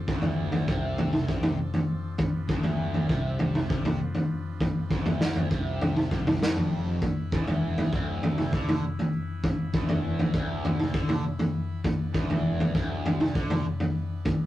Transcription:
Already playing: F3 C4 D4 A4
0.08 D1 D2, kick
0.22 floor tom, high conga
0.52 floor tom
0.68 C2 C3, kick
0.98 floor tom
1.13 mid tom
1.27 C2 C3, kick, high conga
1.43 floor tom, mid tom, low conga
1.73 floor tom, high conga
1.88 high conga, low conga
2.18 B4, kick, floor tom
2.48 D1 D2, kick
2.63 floor tom, high conga
2.94 floor tom
3.08 C2 C3, kick
3.39 floor tom
3.55 mid tom
3.69 C2 C3, kick
3.85 floor tom, mid tom
4.15 floor tom, high conga
4.30 high conga, low conga
4.61 kick, floor tom
4.90 D1 D2, kick
5.05 floor tom, high conga
5.21 snare
5.36 floor tom
5.50 C2 C3, kick, high conga, low conga
5.81 floor tom
5.96 mid tom
6.11 C2 C3, kick, high conga
6.26 floor tom, mid tom, low conga
6.42 F1 F2, snare
6.56 floor tom, high conga
6.72 high conga, low conga
7.02 E3 B3 E4, kick, floor tom
7.32 E1 E2, kick
7.46 floor tom, high conga
7.78 floor tom
7.92 D1 D2, kick
8.23 floor tom
8.38 mid tom
8.52 D2 D3, kick, high conga
8.68 floor tom, mid tom, low conga
8.98 floor tom, high conga
9.13 high conga, low conga
9.44 kick, floor tom
9.74 E1 E2, kick
9.88 floor tom, high conga
10.19 floor tom
10.33 D1 D2, kick, low conga
10.65 floor tom
10.80 mid tom
10.93 D2 D3, kick, high conga
11.08 floor tom, mid tom, low conga
11.39 floor tom, high conga
11.54 high conga, low conga
11.83 D4, kick, floor tom
12.14 E1 E2, kick
12.30 floor tom, high conga
12.60 floor tom
12.74 D1 D2, kick
13.06 floor tom
13.21 mid tom
13.35 D2 D3, kick, high conga
13.50 floor tom, mid tom
13.80 floor tom, high conga
13.96 high conga, low conga
14.25 kick, floor tom

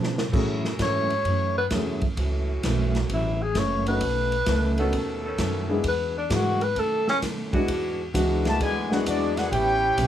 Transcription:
Already playing: B2 C#3 F3 B3 D4
0.04 snare
0.18 snare
0.31 F#2 A2 E3 F#3 A3 C#4 E4 F#4 G#4 A4, kick, crash
0.36 C#4
0.65 snare
0.79 F#2 G#2 E3 A3 C#4 C#5, kick, snare, hi-hat pedal, ride
1.10 ride
1.25 F#2 E3 A3 C#4, kick, ride
1.58 B4
1.70 E2 F#2 E3 F#3 A3 C#4 E4 G#4, kick, snare, hi-hat pedal, ride
2.01 kick, ride
2.16 C#2 F#2 E3 A3 C#4 F#4, kick, ride
2.63 B1 F#2 E3 A3 C#4, kick, snare, hi-hat pedal, ride
2.95 snare, ride
3.09 A1 F#2 E3 A3 C#4, kick, ride
3.14 E4
3.42 G#4
3.55 F#1 F#2 E3 A3 C#4 C#5, kick, snare, hi-hat pedal, ride
3.87 A3 B3 C#4 D#4 F#4 B4, ride
4.01 B1 B2 D#3 A3 C#4, kick, ride
4.32 ride
4.46 C#2 B2 D#3 A3 C#4, kick, snare, hi-hat pedal, ride
4.78 D#3 A3 B3 C#4 D#4 F#4 A4, ride
4.93 D#2 B2 D#3 A3 C#4, kick, ride
5.23 D#3 B3 C#4 A4
5.38 F#2 B2 D#3 A3 C#4, kick, snare, hi-hat pedal, ride
5.69 G#3 B3 D4 E4 G#4
5.84 E2 E3 G#3 D4 F#4, kick, ride
5.88 B4
6.18 D4
6.30 G#2 E3 G#3 D4 F#4, kick, snare, hi-hat pedal, ride
6.34 F#4
6.61 B4, ride
6.74 B2 D#3 A3 C#4, kick, ride
6.79 A4
7.08 C#4, snare
7.22 B2 D#3 A3 C#4, kick, snare, hi-hat pedal, ride
7.52 E3 G#3 B3 D4 E4 F#4, kick, ride
7.68 E2 E3 G#3 D4 F#4, kick, ride
8.14 C#2 E3 G#3 B3 D4 E4 F#4, kick, hi-hat pedal, ride
8.44 A3, snare, ride
8.49 F#4 B4 D5 A5
8.60 D2 B2 D3 E3 G#3 D4 F#4 B4 D5 G#5, kick, ride
8.91 G#3 B3 D4 E4 F#4 G#4 B4 F#5, snare
9.06 E2 E3 G#3 B3 D4 F#4 G#4 D5, kick, hi-hat pedal, ride
9.37 B3 D4 F#4 G#4 B4 F#5, snare, ride
9.51 A1 A2 G3 B3 C#4 E4 G4 B4 C#5 G5, kick, ride
9.97 B1 A2 G3 B3 C#4, kick, hi-hat pedal, ride

